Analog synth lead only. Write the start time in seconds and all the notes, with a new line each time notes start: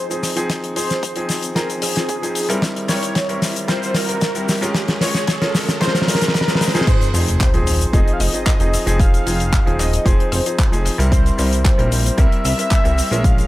Already playing: C5
0.76 C5
1.56 A#4
1.82 G#4
2.89 C#5
3.68 C5
3.95 A#4
5.01 C#5
5.81 C5
6.01 C5
6.08 A#4
6.87 C5
7.14 C5
7.93 D#5
8.13 F5
8.20 D#5
9.00 F5
9.79 D#5
10.06 C5
11.12 C5
11.38 C5
12.18 E5
12.45 E5
13.24 F5